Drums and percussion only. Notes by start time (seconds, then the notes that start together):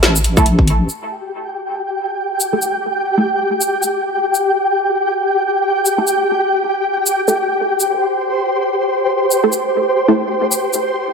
0.03 snare, closed hi-hat
0.16 shaker
0.24 closed hi-hat
0.37 kick, shaker
0.46 closed hi-hat
0.59 kick
0.68 closed hi-hat
0.89 shaker
2.40 shaker
2.62 shaker
3.61 shaker
3.83 shaker
4.34 shaker
5.86 shaker
6.07 shaker
7.06 shaker
7.28 shaker
7.80 shaker
9.31 shaker
9.52 shaker
10.52 shaker
10.73 shaker